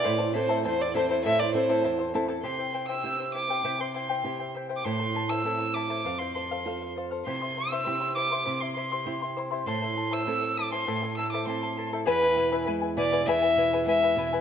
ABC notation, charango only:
X:1
M:2/4
L:1/16
Q:1/4=100
K:Am
V:1 name="Charango"
[EAcea] [Eca] [Ecea] [EAcea] [Ecea] [Eca] [Ecea] [EAcea] | [EAcea] [Eca] [Ecea] [EAcea] [Ecea] [Eca] [Ecea] [EAcea] | [EGceg] [Ecg] [Eceg] [EGceg] [Eceg] [Ecg] [Eceg] [EGceg] | [EGceg] [Ecg] [Eceg] [EGceg] [Eceg] [Ecg] [Eceg] [EGceg] |
[EAcea] [EAa] [EAea] [EAcea] [EAea] [EAa] [EAea] [EAcea] | [Acf] [cf] [Acf] [Acf] [Acf] [cf] [Acf] [Acf] | [EGcec'] [Eec'] [Ecec'] [EGcec'] [Ecec'] [Eec'] [Ecec'] [EGcec'] | [EGcec'] [Eec'] [Ecec'] [EGcec'] [Ecec'] [Eec'] [Ecec'] [EGcec'] |
[EAcea] [EAa] [EAea] [EAcea] [EAea] [EAa] [EAea] [EAcea] | [EAcea] [EAa] [EAea] [EAcea] [EAea] [EAa] [EAea] [EAcea] | [E^GBe^g] [EBg] [EBeg] [EGBeg] [EBeg] [EBg] [EBeg] [EGBeg] | [E^GBe^g] [EBg] [EBeg] [EGBeg] [EBeg] [EBg] [EBeg] [EGBeg] |]